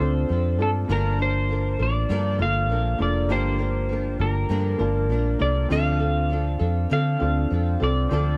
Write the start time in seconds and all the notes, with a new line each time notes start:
Already playing: C4 C5
0.00 D2 C4 D4 F4 A4
0.29 F2 F3 C4 D4 A4
0.58 G2 C4 D4 F4 A4
0.62 C4
0.88 G1 G2 D3 F3 A#3 D4 F4 A#4 A5
0.92 A#4
1.19 F3 A#3 D4 A#4 C5
1.49 F3 A#3 D4 A#4
1.79 A1 F3 A#3 D4 A#4 D5
2.09 G2 D3 F3 A#3 D4 A#4
2.39 G1 A#3 D4 F4 A4 A#4 F5
2.43 F3
2.69 A#1 F3 A#3 D4 A#4
2.98 F1 F3 A#3 D4 F4 A4 A#4 D5
3.29 G1 G2 D3 F3 A#3 D4 F4 G4 A#4 C5
3.59 F3 A#3 D4 A#4
3.89 F3 A#3 D4 A#4
4.19 G1 F3 A#3 D4 A#4
4.49 G2 D3 F3 A#3 D4 A#4
4.78 G1 A#3 D4 F4 A#4 A5
4.83 F3
5.09 A#1 F3 A#3 D4 A#4
5.39 C2 A#3 D4 F4 A4 A#4 D5
5.43 F3
5.69 D2 D3 F3 C4 D4 F4 A4 F5
6.00 C4 D4 A4
6.29 F3 C4 D4 A4
6.59 F2 C4 D4 A4
6.90 D3 F3 C4 D4 A4 F5
7.19 D2 C4 D4 F4 A4
7.23 C4
7.50 F2 F3 C4 D4 A4
7.80 C2 C4 D4 F4 A4 D5
8.09 D2 D3 F3 C4 D4 F4 A4
8.13 A4